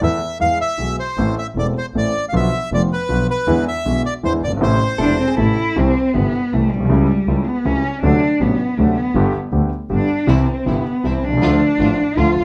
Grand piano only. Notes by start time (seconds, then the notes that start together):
0.01 E2 E3 A3 B3 A4
0.40 E2 E3 G#3 B3 G#4
0.78 B1 B2 E3 G#3 B3 G#4
1.18 A1 A2 E3 A3 C4 A4
1.56 E1 E2 E3 A3 C4 A4
1.95 A1 A2 E3 A3 C4 A4
2.33 B1 B2 D3 F3 B3 F4
2.72 F1 F2 D3 F3 B3 F4
3.09 B1 B2 D3 F3 B3 F4
3.47 E2 D3 E3 G#3 B3 E4
3.85 B1 B2 D3 G#3 B3 E4
4.23 E2 D3 E3 G#3 B3 E4
4.47 F#1
4.52 G1
4.57 G#1 C3
4.61 A1 A2 E3 A3 E4
4.98 E1 E2 C3 E3 A3 E4
5.37 A1 A2 C3 E3 A3 E4
5.76 C2 C3 E3 G3 E4
6.14 G1 G2 C3 E3 G3 E4
6.53 C2 C3 E3 G3 E4
6.76 A#1
6.80 B1
6.85 C2
6.89 C#2 C#3 G3 A3 E4
7.28 C#2 C#3 G3 A3 E4
7.65 C#2 C#3 G3 A3 E4
8.03 D2 C3 D3 F#3 A3 D4
8.40 A1 A2 C3 F#3 A3 D4
8.78 D2 C3 D3 F#3 A3 D4
9.15 G1 G2 D3 G3 B3 G4
9.52 D2 D3 G3 B3 G4
9.90 G1 G2 D3 G3 B3 G4
10.27 C2 C3 E3 G3 E4
10.66 G1 G2 C3 E3 G3 E4
11.04 C2 C3 E3 G3 E4
11.28 B1
11.33 C2
11.37 C#2
11.42 D2 D3 F3 A3 F4
11.80 A1 A2 D3 F3 A3 F4
12.17 D2 D3 F3 A3 F4
12.41 E2